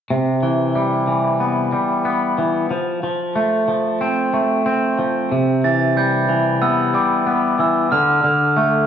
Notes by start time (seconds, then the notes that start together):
0.10 C3
0.43 E3
0.75 G3
1.08 E3
1.40 B3
1.72 G3
2.05 B3
2.38 E3
2.71 F3
3.03 F3
3.36 A3
3.68 F3
4.01 C4
4.34 A3
4.66 C4
4.99 F3
5.32 C3
5.64 E3 A6
5.97 G3 G6
6.29 E3
6.62 B3 E6
6.94 G3 D6
7.27 B3
7.59 E3 E6
7.92 D3 F6
8.24 D3 F6
8.57 A3